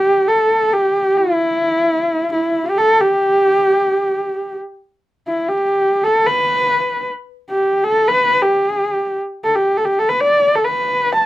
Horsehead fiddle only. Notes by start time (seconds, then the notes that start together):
Already playing: G4
0.28 A4
0.73 G4
1.17 E4
2.32 E4
2.66 G4
2.77 A4
3.01 G4
5.27 E4
5.48 G4
6.04 A4
6.26 B4
7.50 G4
7.84 A4
8.08 B4
8.42 G4
9.44 A4
9.55 G4
9.77 A4
9.85 G4
9.99 A4
10.09 B4
10.20 D5
10.55 A4
10.65 B4
11.14 A5